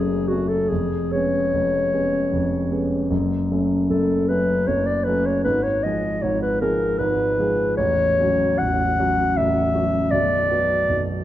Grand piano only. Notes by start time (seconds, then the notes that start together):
Already playing: F#1 F#2 F#3 A3 C#4
0.31 F#3 A3 C#4
0.72 F1 F2
1.15 G#3 B3 C#4
1.54 F1 F2
1.93 G#3 B3 C#4
2.32 F1 F2
2.71 G#3 B3 C#4
3.10 F#1 F#2
3.51 F#3 A3 C#4
3.90 F#1 F#2
4.30 F#3 A3 C#4
4.68 F#1 F#2
5.07 F#3 A3 C#4
5.45 G#1 G#2
5.85 F3 G#3 G#4
6.23 G#1 G#2
6.62 F3 G#3 G#4
7.00 G#1 G#2
7.39 F3 G#3 G#4
7.78 A0 A1
8.20 F#3 C#4 F#4
8.61 A0 A1
8.99 F#3 C#4 F#4
9.37 A0 A1
9.75 F#3 C#4 F#4
10.12 B0 B1
10.50 F#3 B3 F#4
10.89 B0 B1